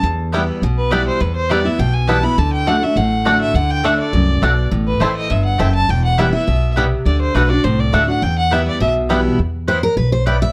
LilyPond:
<<
  \new Staff \with { instrumentName = "Fiddle" } { \time 4/4 \key e \minor \tempo 4 = 205 r2 r8 b'8 d''8 c''8 | b'8 c''8 d''8 e''8 g''8 gis''8 a''8 b''8 | a''8 g''8 fis''8 e''8 fis''4. e''8 | fis''8 g''8 e''8 d''2~ d''8 |
r8 b'8 c''8 dis''8 e''8 fis''8 g''8 a''8 | g''8 fis''8 e''8 e''4. r4 | d''8 c''8 b'8 d''8 c''8 d''8 e''8 fis''8 | g''8 fis''8 e''8 d''8 e''8 r4. |
r1 | }
  \new Staff \with { instrumentName = "Mandolin" } { \time 4/4 \key e \minor r4 <b e' b' g''>8 r4. <b e' b' g''>8 r8 | r4 <b e' b' g''>8 r4. <b e' b' g''>8 r8 | r4 <a fis' d'' fis''>8 r4. <a fis' d'' fis''>8 r8 | r4 <a fis' d'' fis''>8 r4. <a fis' d'' fis''>8 r8 |
r4 <a e' c'' a''>8 r4. <a e' c'' a''>8 r8 | r4 <b e' b' g''>8 r4. <b e' b' g''>8 r8 | r4 <a fis' d'' fis''>8 r4. <a fis' d'' fis''>8 r8 | r4 <b e' b' g''>8 r4. <b e' b' g''>8 r8 |
r4 <b e' b' g''>8 r4. <b e' b' g''>8 r8 | }
  \new Staff \with { instrumentName = "Five-string banjo" } { \time 4/4 \key e \minor r4 <g b e'>8 r4. <g b e'>8 r8 | r4 <g b e'>8 r4. <g b e'>8 r8 | r4 <a d'>8 r4. <a d'>8 r8 | r4 <a d'>8 r4. <a d'>8 r8 |
r4 <a c' e'>8 r4. <a c' e'>8 r8 | r4 <g b e'>8 r4. <g b e'>8 r8 | r4 <a d'>8 r4. <a d'>8 r8 | r4 <g b e'>8 r4. <g b e'>8 r8 |
r1 | }
  \new Staff \with { instrumentName = "Steel-string acoustic guitar" } { \time 4/4 \key e \minor << { r4 <e g b e'>4 r4 <e g b e'>4 | r4 <e g b e'>8 <b e'>8 r4 <e g b e'>8 <b e'>8 | r4 <d a d' fis'>8 <d' fis'>8 r4 <d a d' fis'>4 | r4 <d a d' fis'>4 r2 |
r4 <e a c' e'>4 r2 | r4 <e g b e'>8 <b e'>8 r2 | r4 <d a d' fis'>8 <d' fis'>8 r4 <d a d' fis'>8 <d' fis'>8 | r4 <e g b e'>4 r4 <e g b e'>4 |
r4 c''8 ais'8 b'8 c''8 d''8 e''8 | } \\ { e,2 b,2 | e,2 b,2 | d2 a,2 | d2 fis,4 b,4 |
a,2 g,4 fis,4 | e,2 b,4 c4 | d2 a,2 | e,2 b,2 |
r1 | } >> }
  \new Staff \with { instrumentName = "Upright bass" } { \clef bass \time 4/4 \key e \minor e,2 b,,2 | e,2 b,,2 | d,2 a,,2 | d,2 c,4 b,,4 |
a,,4 a,,4 g,,4 fis,,4 | e,,2 b,,2 | d,4 b,,4 c,4 d,4 | e,2 b,,2 |
e,2 b,,2 | }
>>